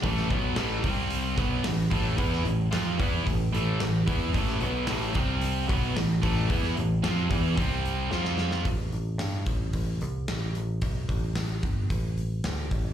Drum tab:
HH |o-o-o-o-o-o-o-o-|o-o-o-o-o-o-o-o-|o-o-o-o-o-o-o-o-|o-o-o-o-o-o-----|
SD |-o--o-------o---|-o--o-------o---|-o--o-------o---|-o--o-------oooo|
BD |o-o---o---o---o-|o-----o-o-----o-|o-----o---o---o-|o-----o-o-------|

HH |o-o-o-o-o-o-o-o-|o-o-o-o-o-o-o-o-|
SD |----o-------o---|----o-------o---|
BD |o-----o-o-------|o-o---o-o-----o-|